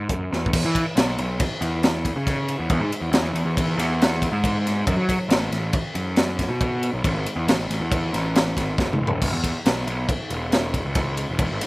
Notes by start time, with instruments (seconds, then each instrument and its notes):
0.09 picked electric bass F#2, kick, closed hi-hat
0.32 picked electric bass E2, snare
0.46 kick
0.53 picked electric bass E2, kick, crash
0.65 picked electric bass E3
0.75 kick, ride
0.96 picked electric bass B1, snare, ride
1.18 picked electric bass B1, ride
1.40 kick, snare, ride
1.61 picked electric bass E2, ride
1.83 snare, ride
2.05 kick, ride
2.16 picked electric bass C#3
2.27 kick, snare, ride
2.48 ride
2.59 picked electric bass E2
2.70 picked electric bass E2, kick, ride
2.80 picked electric bass G#2
2.92 ride
3.01 picked electric bass E2
3.11 picked electric bass E2, snare, ride
3.22 picked electric bass E2
3.34 picked electric bass E2, ride
3.45 picked electric bass E2
3.57 kick, ride
3.77 picked electric bass E2, snare, ride
4.02 snare, ride
4.22 kick, ride
4.32 picked electric bass G#2
4.44 kick, ride
4.67 snare, ride
4.87 picked electric bass F#2, kick, ride
4.96 picked electric bass F#3
5.09 kick, ride
5.29 picked electric bass A1, snare, ride
5.51 picked electric bass A1, snare, ride
5.73 kick, ride
5.95 picked electric bass F#2, ride
6.16 snare, ride
6.39 kick, snare, ride
6.49 picked electric bass B2
6.61 kick, ride
6.83 ride
6.93 picked electric bass B1
7.04 picked electric bass A1, kick, ride
7.14 picked electric bass G#1
7.26 ride
7.36 picked electric bass E2
7.47 picked electric bass A1, snare, ride
7.58 picked electric bass A1
7.69 picked electric bass A1, snare, ride
7.80 picked electric bass E2
7.92 kick, ride
8.13 picked electric bass A1, snare, ride
8.36 snare, ride
8.57 picked electric bass G#1, kick, snare, ride
8.78 picked electric bass F#1, kick, snare
8.93 mid tom
9.00 picked electric bass E1
9.07 floor tom
9.22 picked electric bass E1, kick, splash, crash
9.33 picked electric bass E2
9.44 kick, ride
9.65 picked electric bass B1, snare, ride
9.87 picked electric bass B1, ride
10.09 kick, ride
10.30 picked electric bass E1, ride
10.52 snare, ride
10.74 kick, ride
10.85 picked electric bass C#2
10.95 kick, snare, ride
11.17 ride
11.29 picked electric bass E1
11.39 picked electric bass E1, kick, ride
11.50 picked electric bass G#1
11.61 snare, ride